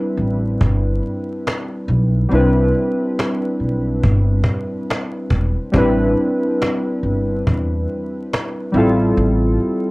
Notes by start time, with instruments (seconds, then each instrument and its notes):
Already playing: synth keys G3 C4 D4 E4 B4
0.16 upright bass A1, cajon slap
0.61 upright bass G1, cajon bass
1.03 cajon slap
1.47 cajon slap
1.88 upright bass B1, cajon slap
2.29 upright bass C2, synth keys G3 C4 D4, cajon slap
2.33 synth keys E4 B4
2.75 cajon slap
3.19 cajon slap
3.60 upright bass B1, cajon slap
4.03 upright bass G1, cajon bass
4.44 cajon bass
4.90 cajon slap
5.30 upright bass E1, cajon bass
5.72 upright bass A1, synth keys G3 C4 D4, cajon bass
5.77 synth keys E4 B4
6.18 cajon slap
6.62 cajon slap
7.03 upright bass G1, cajon slap
7.47 upright bass E2, cajon bass
7.89 cajon slap
8.33 cajon slap
8.72 upright bass A1, synth keys G3 C4 E4, cajon slap
8.77 synth keys F4 A4
9.17 upright bass A1, cajon slap
9.60 cajon slap